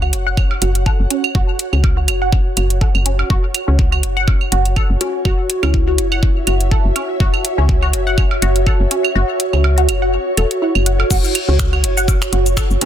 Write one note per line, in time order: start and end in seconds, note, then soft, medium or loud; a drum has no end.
0.00 0.15 C#2 loud
0.00 12.85 F#4 medium
0.00 0.06 F#4 medium
0.00 12.85 C#5 medium
0.00 5.16 F#5 medium
0.00 claves soft
0.13 0.42 F#1 medium
0.13 closed hi-hat medium
0.27 0.30 F#5 loud
0.37 kick loud
0.37 claves medium
0.51 high woodblock medium
0.62 0.91 F#1 medium
0.62 0.68 F#4 medium
0.62 closed hi-hat medium
0.75 closed hi-hat soft
0.86 0.90 A4 medium
0.86 kick loud
0.86 claves soft
1.00 1.06 F#1 medium
1.10 1.15 C#4 medium
1.10 closed hi-hat medium
1.24 claves medium
1.35 1.43 F#1 loud
1.35 1.41 F#4 loud
1.35 kick loud
1.59 closed hi-hat medium
1.73 2.10 C#2 medium
1.73 1.75 C#4 medium
1.73 claves soft
1.84 kick loud
1.84 high woodblock medium
1.97 2.01 F#4 medium
2.08 2.38 F#1 medium
2.08 closed hi-hat medium
2.08 claves medium
2.22 2.25 F#5 loud
2.33 kick loud
2.57 2.86 F#1 medium
2.57 2.63 F#4 medium
2.57 closed hi-hat medium
2.57 claves soft
2.70 closed hi-hat soft
2.81 2.85 A4 medium
2.81 kick loud
2.95 3.23 F#1 medium
2.95 claves medium
3.06 3.10 C#4 medium
3.06 closed hi-hat medium
3.19 high woodblock medium
3.30 3.38 F#1 loud
3.30 3.36 F#4 loud
3.30 kick loud
3.54 closed hi-hat medium
3.54 claves soft
3.68 4.05 C#2 medium
3.68 3.70 C#4 medium
3.79 kick loud
3.92 3.96 F#4 medium
3.92 claves medium
4.03 4.33 F#1 medium
4.03 closed hi-hat medium
4.17 4.20 F#5 loud
4.28 kick loud
4.28 high woodblock medium
4.41 claves soft
4.52 4.81 F#1 medium
4.52 4.58 F#4 medium
4.52 closed hi-hat medium
4.65 closed hi-hat soft
4.76 4.81 A4 medium
4.76 kick loud
4.76 claves medium
4.90 4.97 F#1 medium
5.00 5.05 C#4 medium
5.00 5.70 F#4 medium
5.00 12.27 E5 medium
5.00 closed hi-hat medium
5.25 5.33 F#1 loud
5.25 5.31 F#4 loud
5.25 kick loud
5.25 claves soft
5.50 closed hi-hat medium
5.63 6.00 C#2 medium
5.63 5.65 C#4 medium
5.63 5.98 E4 medium
5.63 claves medium
5.63 high woodblock medium
5.74 kick loud
5.87 5.91 F#4 medium
5.98 6.28 F#1 medium
5.98 closed hi-hat medium
6.12 6.15 F#5 loud
6.12 claves soft
6.23 kick loud
6.47 6.77 F#1 medium
6.47 6.53 F#4 medium
6.47 closed hi-hat medium
6.47 claves medium
6.61 closed hi-hat soft
6.71 6.76 A4 medium
6.71 kick loud
6.85 6.92 F#1 medium
6.96 7.00 C#4 medium
6.96 closed hi-hat medium
6.96 claves soft
6.96 high woodblock medium
7.20 7.28 F#1 loud
7.20 7.26 F#4 loud
7.20 kick loud
7.34 claves medium
7.45 closed hi-hat medium
7.58 7.95 C#2 loud
7.58 7.60 C#4 medium
7.69 kick loud
7.82 7.86 F#4 medium
7.82 claves soft
7.93 8.23 F#1 medium
7.93 closed hi-hat medium
8.07 8.10 F#5 loud
8.18 kick loud
8.18 claves medium
8.31 high woodblock medium
8.42 8.72 F#1 medium
8.42 8.48 F#4 medium
8.42 closed hi-hat medium
8.56 closed hi-hat soft
8.67 8.71 A4 medium
8.67 kick loud
8.67 claves soft
8.80 8.87 F#1 medium
8.91 8.95 C#4 medium
8.91 closed hi-hat medium
9.05 claves medium
9.15 9.24 F#1 loud
9.15 9.22 F#4 loud
9.40 closed hi-hat medium
9.53 9.90 C#2 loud
9.53 9.55 C#4 medium
9.53 claves soft
9.64 high woodblock medium
9.78 9.81 F#4 medium
9.78 closed hi-hat soft
9.89 10.18 F#1 medium
9.89 closed hi-hat medium
9.89 claves medium
10.02 10.05 F#5 loud
10.37 10.46 E1 medium
10.37 10.42 A4 loud
10.37 closed hi-hat medium
10.37 claves soft
10.51 closed hi-hat soft
10.62 10.68 E4 medium
10.75 11.04 F#1 loud
10.75 claves medium
10.86 10.90 F#5 medium
10.86 closed hi-hat medium
11.00 high woodblock medium
11.11 11.19 F#1 loud
11.11 11.17 F#4 loud
11.11 kick loud
11.11 crash loud
11.11 shaker medium
11.24 shaker soft
11.35 closed hi-hat medium
11.35 claves soft
11.42 12.85 F#5 medium
11.48 11.85 C#2 loud
11.48 11.51 C#4 medium
11.59 finger snap medium
11.59 kick loud
11.59 shaker medium
11.73 11.76 F#4 medium
11.73 claves medium
11.84 12.13 F#1 medium
11.84 closed hi-hat medium
11.97 12.01 F#5 loud
11.97 shaker soft
12.08 kick loud
12.08 high woodblock medium
12.08 shaker medium
12.22 finger snap medium
12.22 claves soft
12.22 shaker soft
12.33 12.62 F#1 medium
12.33 12.39 F#4 medium
12.33 closed hi-hat medium
12.46 closed hi-hat soft
12.46 shaker soft
12.57 12.61 A4 medium
12.57 finger snap loud
12.57 kick loud
12.57 claves medium
12.57 shaker medium
12.70 12.77 F#1 loud
12.70 shaker soft
12.81 12.85 C#4 medium
12.81 closed hi-hat medium
12.81 low conga loud